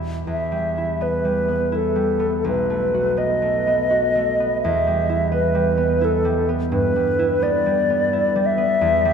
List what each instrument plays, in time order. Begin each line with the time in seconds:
Already playing: harp E2 G3 B3 E4 G4
0.27 harp E2, flute E5
0.52 harp G3
0.78 harp E4
1.01 harp B3, flute B4
1.25 harp G3
1.48 harp B3
1.72 harp E4, flute A4
1.96 harp G3
2.20 harp B3
2.44 harp B1, flute B4
2.70 harp A3
2.94 harp F#4
3.17 harp B3, flute D#5
3.42 harp A3
3.67 harp B3
3.90 harp F#4
4.15 harp A3
4.40 harp B3
4.62 harp E2, flute E5
4.87 harp G3
5.09 harp E4
5.32 harp B3, flute B4
5.55 harp G3
5.78 harp B3
6.01 harp E4, flute A4
6.25 harp G3
6.49 harp B3
6.72 harp G2, flute B4
6.96 harp G3
7.19 harp E4
7.42 harp B3, flute D5
7.66 harp G3
7.90 harp B3
8.13 harp E4
8.36 harp G3
8.46 flute E5
8.58 harp B3
8.81 harp E2
9.05 harp G3